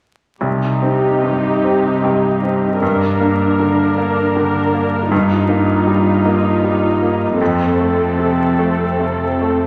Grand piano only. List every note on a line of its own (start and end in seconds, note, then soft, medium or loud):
0.41 2.77 C2 soft
0.82 1.47 C4 soft
1.23 1.87 G2 soft
1.64 2.27 C4 soft
2.03 2.66 G2 soft
2.43 2.82 C4 soft
2.82 5.07 G2 soft
3.20 3.82 A#3 soft
3.60 4.21 D3 soft
3.97 4.58 A#3 soft
4.36 4.96 D3 soft
4.74 5.11 A#3 soft
5.11 7.36 G2 soft
5.49 6.09 A#3 soft
5.87 6.48 G3 soft
6.25 6.86 A#3 soft
6.64 7.25 G3 soft
7.02 7.40 A#3 soft
7.41 9.67 F2 soft
7.80 8.43 A3 soft
8.19 8.84 C3 soft
8.59 9.25 A3 soft
9.00 9.67 C3 soft
9.41 9.67 A3 soft